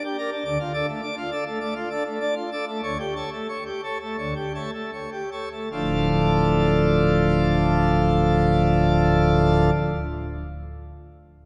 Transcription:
0.05 0.17 G4 medium
0.18 0.30 A#4 medium
0.18 0.30 D5 medium
0.32 0.44 D4 medium
0.45 0.57 D2 loud
0.45 0.58 D3 loud
0.45 0.58 D5 loud
0.60 0.73 F4 medium
0.74 0.87 D4 medium
0.74 0.86 A4 medium
0.74 0.86 D5 medium
0.88 1.01 A3 medium
1.02 1.15 D4 medium
1.02 1.15 D5 medium
1.18 1.30 F4 medium
1.32 1.44 A4 medium
1.32 1.44 D5 loud
1.46 1.59 A3 medium
1.61 1.74 A3 medium
1.61 1.74 D5 loud
1.76 1.89 F4 medium
1.90 2.04 D4 medium
1.90 2.03 A4 medium
1.90 2.03 D5 medium
2.05 2.19 A3 medium
2.21 2.34 D4 medium
2.21 2.34 D5 medium
2.36 2.50 F4 medium
2.51 2.65 A4 medium
2.51 2.65 D5 medium
2.67 2.81 A3 medium
2.83 2.97 D2 loud
2.83 2.97 D3 loud
2.83 2.98 C#5 loud
3.00 3.14 G4 medium
3.16 3.30 A4 medium
3.16 3.30 C#5 medium
3.32 3.47 A3 medium
3.49 3.64 C#5 medium
3.66 3.81 G4 medium
3.83 3.98 A4 medium
3.83 3.98 C#5 medium
4.01 4.16 A3 medium
4.18 4.33 D2 medium
4.18 4.33 D3 medium
4.18 4.34 C#5 medium
4.36 4.52 G4 medium
4.54 4.71 A3 medium
4.54 4.70 A4 medium
4.54 4.70 C#5 medium
4.74 4.90 A3 medium
4.93 5.10 C#5 medium
5.12 5.30 G4 medium
5.32 5.49 A4 medium
5.32 5.49 C#5 medium
5.52 5.69 A3 medium
5.72 9.70 D1 medium
5.72 9.70 D2 medium
5.72 9.70 A2 medium
5.72 9.70 F3 medium
5.72 9.70 A3 medium
5.72 9.70 D4 medium
5.72 9.70 F4 medium

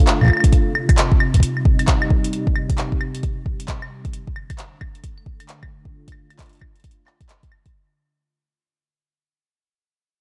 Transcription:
0.00 0.52 D3 medium
0.00 0.52 A3 medium
0.00 0.52 D4 medium
0.00 1.99 F4 medium
0.07 clap loud
0.07 closed hi-hat medium
0.21 kick soft
0.21 claves soft
0.23 kick medium
0.23 claves soft
0.25 kick medium
0.25 claves soft
0.26 kick medium
0.26 claves soft
0.28 kick medium
0.28 claves soft
0.33 claves medium
0.37 claves medium
0.40 kick loud
0.40 closed hi-hat soft
0.40 claves medium
0.52 4.13 C3 medium
0.52 kick loud
0.52 closed hi-hat medium
0.75 claves medium
0.89 kick loud
0.89 closed hi-hat soft
0.89 claves medium
0.98 clap loud
0.98 closed hi-hat medium
1.12 kick loud
1.19 4.13 G3 medium
1.19 claves medium
1.27 4.13 D#4 medium
1.34 kick soft
1.34 kick medium
1.34 closed hi-hat soft
1.40 kick medium
1.40 closed hi-hat medium
1.57 claves soft
1.65 kick loud
1.79 closed hi-hat soft
1.79 claves soft
1.88 kick loud
1.88 clap loud
1.88 closed hi-hat medium
2.02 claves medium
2.10 kick loud
2.24 closed hi-hat soft
2.33 closed hi-hat medium
2.47 kick loud
2.56 claves medium
2.70 kick medium
2.70 closed hi-hat soft
2.78 clap loud
2.78 closed hi-hat medium
2.92 kick medium
3.01 claves medium
3.15 closed hi-hat soft
3.23 kick loud
3.23 closed hi-hat medium
3.46 kick medium
3.60 closed hi-hat soft
3.68 kick medium
3.68 clap loud
3.68 closed hi-hat medium
3.82 claves medium
4.05 kick loud
4.05 closed hi-hat soft
4.13 7.74 D3 medium
4.13 closed hi-hat medium
4.27 kick medium
4.36 7.74 A3 medium
4.36 claves medium
4.50 kick medium
4.50 closed hi-hat soft
4.50 claves medium
4.58 clap loud
4.58 closed hi-hat medium
4.81 kick loud
4.81 claves medium
4.95 closed hi-hat soft
5.04 kick medium
5.04 closed hi-hat medium
5.09 7.74 D4 medium
5.18 claves soft
5.26 kick medium
5.40 closed hi-hat soft
5.40 claves soft
5.45 7.74 F4 medium
5.49 clap loud
5.49 closed hi-hat medium
5.63 kick loud
5.63 claves medium
5.85 kick medium
6.08 kick loud
6.08 closed hi-hat medium
6.12 claves medium
6.30 closed hi-hat soft
6.30 claves medium
6.39 kick loud
6.39 clap loud
6.39 closed hi-hat medium
6.42 closed hi-hat soft
6.46 closed hi-hat soft
6.49 closed hi-hat soft
6.53 closed hi-hat soft
6.55 closed hi-hat soft
6.57 closed hi-hat soft
6.59 kick medium
6.59 closed hi-hat soft
6.59 claves medium
6.76 closed hi-hat soft
6.80 closed hi-hat soft
6.84 kick medium
6.84 closed hi-hat medium
6.91 closed hi-hat soft
7.07 clap medium
7.07 claves medium
7.21 kick loud
7.21 closed hi-hat soft
7.29 clap loud
7.29 closed hi-hat medium
7.43 kick medium
7.43 closed hi-hat soft
7.52 claves medium
7.66 kick medium
7.66 closed hi-hat soft

